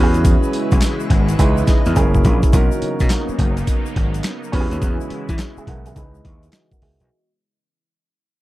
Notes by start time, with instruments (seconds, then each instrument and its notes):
Already playing: slap bass E2, analog synth pad C#3 E3 G#3 B3 E4, grand piano C#4 F#4 B4, resonator guitar played with a steel bar B4
0.04 grand piano G#4
0.14 closed hi-hat, shaker
0.25 kick, closed hi-hat, tambourine, shaker
0.43 shaker
0.53 closed hi-hat, tambourine
0.71 slap bass B1, kick, closed hi-hat, shaker
0.82 snare, clap, closed hi-hat, tambourine, shaker
1.00 shaker
1.10 slap bass G#1, kick, closed hi-hat, tambourine
1.29 closed hi-hat, shaker
1.39 slap bass C#2, grand piano D#4 E4 G#4 B4, analog synth pad D#5, kick, closed hi-hat, tambourine, shaker
1.57 shaker
1.67 muted slap bass stroke, kick, snare, closed hi-hat, shaker
1.86 slap bass E2, closed hi-hat, shaker
1.96 slap bass F#1, analog synth pad F#3 A#3 E4, grand piano C#4 E4 G#4 A#4, kick, closed hi-hat, shaker
2.14 kick, shaker
2.24 slap bass A#1, kick, closed hi-hat, shaker
2.43 kick, closed hi-hat, shaker
2.53 slap bass B1, analog synth pad C#3 F#3 A#3 B3 D#4, grand piano C#4 D#4 F#4 A#4, kick, closed hi-hat, tambourine, shaker
2.72 shaker
2.82 muted slap bass stroke, closed hi-hat, tambourine
3.00 slap bass B2, kick, closed hi-hat, shaker
3.10 snare, clap, closed hi-hat, tambourine, shaker
3.28 muted slap bass stroke, shaker
3.39 slap bass F#1, kick, closed hi-hat, tambourine
3.57 closed hi-hat, shaker
3.67 kick, closed hi-hat, tambourine, shaker
3.86 shaker
3.96 slap bass G#1, kick, closed hi-hat
4.14 closed hi-hat, shaker
4.24 snare, clap, closed hi-hat, tambourine, shaker
4.43 shaker
4.52 slap bass E2, analog synth pad C#3 E3 G#3 E4, grand piano C#4 F#4 G4 B4, kick, open hi-hat, tambourine
4.60 grand piano G#4
4.71 slap bass D#2, closed hi-hat, shaker
4.82 slap bass E2, kick, closed hi-hat, shaker
5.01 shaker
5.10 muted slap bass stroke, closed hi-hat
5.29 slap bass E3, kick, closed hi-hat, shaker
5.39 snare, clap, closed hi-hat, shaker
5.57 grand piano G#4 E5, muted slap bass stroke, shaker
5.67 slap bass B1, grand piano A#4 F#5, kick, closed hi-hat
5.86 grand piano G#4 E5, closed hi-hat, shaker
5.96 slap bass C#2, analog synth pad E3 D#5, grand piano D#4 E4 G#4 B4, kick, closed hi-hat, shaker
6.15 shaker
6.25 slap bass D#2, kick, closed hi-hat
6.43 closed hi-hat, shaker
6.53 grand piano F#4 D#5, snare, clap, closed hi-hat, shaker
6.72 grand piano A#4 F#5, kick, shaker
6.82 slap bass C#2, grand piano G#4 E5, open hi-hat
7.00 slap bass B1, grand piano F#4 D#5, closed hi-hat